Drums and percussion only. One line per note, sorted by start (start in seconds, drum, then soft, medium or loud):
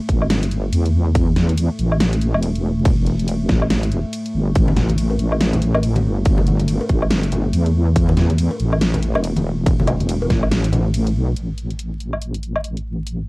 0.09 kick medium
0.09 closed hi-hat medium
0.22 low woodblock soft
0.30 snare loud
0.30 closed hi-hat medium
0.30 ride medium
0.43 closed hi-hat medium
0.51 closed hi-hat medium
0.73 closed hi-hat medium
0.73 ride soft
0.86 closed hi-hat soft
1.15 kick loud
1.15 closed hi-hat medium
1.15 ride medium
1.36 snare medium
1.36 closed hi-hat medium
1.49 closed hi-hat soft
1.57 closed hi-hat medium
1.57 ride soft
1.79 closed hi-hat medium
1.92 low woodblock medium
2.00 snare loud
2.00 closed hi-hat medium
2.00 ride medium
2.13 closed hi-hat medium
2.21 closed hi-hat medium
2.34 low woodblock medium
2.42 closed hi-hat medium
2.42 ride soft
2.55 closed hi-hat soft
2.85 kick loud
2.85 closed hi-hat medium
2.85 ride medium
3.07 closed hi-hat medium
3.19 closed hi-hat soft
3.28 closed hi-hat medium
3.28 ride soft
3.49 kick medium
3.49 snare medium
3.49 closed hi-hat soft
3.62 low woodblock medium
3.70 snare loud
3.70 closed hi-hat medium
3.70 ride medium
3.83 closed hi-hat medium
3.92 closed hi-hat medium
4.13 closed hi-hat medium
4.13 ride soft
4.26 closed hi-hat soft
4.55 kick loud
4.55 closed hi-hat medium
4.55 ride medium
4.68 high conga loud
4.77 snare medium
4.77 closed hi-hat medium
4.77 low conga medium
4.89 closed hi-hat soft
4.89 high conga medium
4.98 closed hi-hat medium
4.98 ride soft
5.10 high bongo medium
5.19 closed hi-hat soft
5.32 high bongo soft
5.32 low woodblock medium
5.40 snare loud
5.40 closed hi-hat medium
5.40 ride medium
5.53 closed hi-hat medium
5.53 low conga medium
5.62 closed hi-hat medium
5.74 high bongo medium
5.74 low woodblock medium
5.83 closed hi-hat medium
5.83 ride soft
5.96 closed hi-hat soft
5.96 high conga loud
6.25 kick loud
6.25 closed hi-hat medium
6.25 ride medium
6.38 high conga medium
6.47 closed hi-hat medium
6.47 low conga medium
6.60 closed hi-hat soft
6.60 high conga medium
6.68 closed hi-hat medium
6.68 ride soft
6.81 high bongo medium
6.89 kick medium
6.89 closed hi-hat medium
7.02 high bongo soft
7.02 low woodblock medium
7.11 snare loud
7.11 closed hi-hat medium
7.11 ride medium
7.23 closed hi-hat medium
7.32 closed hi-hat medium
7.32 high conga medium
7.32 low conga medium
7.53 closed hi-hat medium
7.53 ride soft
7.66 closed hi-hat soft
7.96 kick loud
7.96 closed hi-hat medium
7.96 ride medium
8.09 high conga loud
8.17 snare medium
8.17 closed hi-hat medium
8.17 low conga medium
8.30 closed hi-hat soft
8.30 high conga medium
8.38 closed hi-hat medium
8.38 ride soft
8.51 high bongo soft
8.60 closed hi-hat medium
8.72 high bongo soft
8.72 low woodblock medium
8.81 snare loud
8.81 closed hi-hat medium
8.81 ride medium
8.94 closed hi-hat medium
8.94 low conga medium
9.03 closed hi-hat medium
9.15 high bongo medium
9.15 low woodblock medium
9.24 closed hi-hat medium
9.24 ride soft
9.36 closed hi-hat soft
9.36 high conga medium
9.66 kick loud
9.66 closed hi-hat medium
9.66 ride medium
9.80 high conga medium
9.87 closed hi-hat medium
9.87 low conga medium
9.87 low woodblock medium
10.00 closed hi-hat soft
10.00 high conga medium
10.09 closed hi-hat medium
10.09 ride medium
10.22 high bongo medium
10.30 kick medium
10.30 snare medium
10.30 closed hi-hat medium
10.43 high bongo soft
10.43 low woodblock medium
10.51 snare loud
10.51 closed hi-hat medium
10.51 ride medium
10.64 closed hi-hat medium
10.72 closed hi-hat medium
10.72 high conga medium
10.72 low conga medium
10.94 closed hi-hat medium
10.94 ride soft
11.07 closed hi-hat soft
11.36 closed hi-hat medium
11.58 closed hi-hat soft
11.70 closed hi-hat soft
11.79 closed hi-hat medium
12.00 closed hi-hat soft
12.13 low woodblock soft
12.22 closed hi-hat medium
12.34 closed hi-hat medium
12.43 closed hi-hat medium
12.56 low woodblock medium
12.64 closed hi-hat medium
12.77 closed hi-hat soft
13.07 closed hi-hat medium